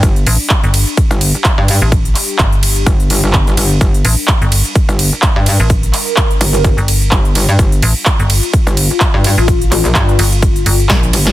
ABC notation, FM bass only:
X:1
M:4/4
L:1/16
Q:"Swing 16ths" 1/4=127
K:Gm
V:1 name="FM bass" clef=bass
z2 A,,, z2 G,,,2 z8 A,,,- | A,,,2 z2 G,,,4 z8 | z2 A,,, z2 G,,,2 z8 A,,,- | A,,,2 z6 z G,,,3 z4 |
z2 A,,, z2 G,,,2 z8 A,,,- | A,,,2 z4 G,,,4 G,,,2 z4 |]